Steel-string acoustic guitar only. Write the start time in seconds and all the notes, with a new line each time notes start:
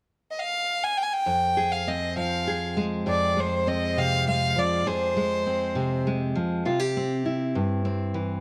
1.26 F2
1.57 G#4
1.87 C4
2.17 F3
2.48 G#4
2.77 G#3
3.06 F2 G#4
3.37 G#3
3.67 C4
3.97 C3
4.27 G#3
4.56 F3
4.86 F2 G#4
5.17 G#3
5.46 C4
5.75 C3
6.07 G#3
6.35 F3
6.65 C3 F4
6.79 G4
6.97 C4
7.26 E4
7.55 G2
7.85 C4
8.14 E3